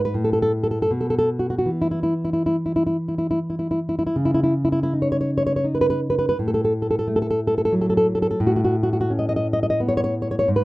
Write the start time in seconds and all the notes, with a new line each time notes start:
Already playing: G#2
0.05 B4
0.14 A2
0.24 A4
0.33 A4
0.42 A4
0.64 A4
0.71 A4
0.82 A4
0.91 B2
1.01 A4
1.10 A4
1.19 A4
1.39 F#4
1.50 F#4
1.59 F#4
1.66 E3
1.82 E4
1.91 E4
2.03 E4
2.25 E4
2.33 E4
2.46 E4
2.66 E4
2.76 E4
2.87 E4
3.08 E4
3.18 E4
3.31 E4
3.50 E4
3.59 E4
3.71 E4
3.89 E4
3.99 E4
4.07 E4
4.16 C#3
4.25 E4
4.34 E4
4.44 E4
4.65 E4
4.72 E4
4.83 E4
4.93 D#4
5.02 C#5
5.12 C#5
5.21 C#5
5.38 C#5
5.47 C#5
5.56 C#5
5.64 D#4
5.75 B4
5.81 B4
5.90 B4
6.10 B4
6.19 B4
6.29 B4
6.39 A2
6.48 A4
6.54 A4
6.65 A4
6.82 A4
6.91 A4
6.99 A4
7.08 A3
7.16 A4
7.22 A4
7.31 A4
7.47 A4
7.58 A4
7.65 A4
7.72 F#3
7.81 A4
7.90 A4
7.97 A4
8.15 A4
8.22 A4
8.31 A4
8.40 A2
8.47 F#4
8.56 F#4
8.65 F#4
8.83 F#4
8.93 F#4
9.01 F#4
9.10 C#4
9.19 D#5
9.29 D#5
9.36 D#5
9.53 D#5
9.63 D#5
9.70 D#5
9.80 B3
9.89 C#5
9.97 C#5
10.04 C#5
10.22 C#5
10.31 C#5
10.39 C#5
10.48 G#2
10.56 B4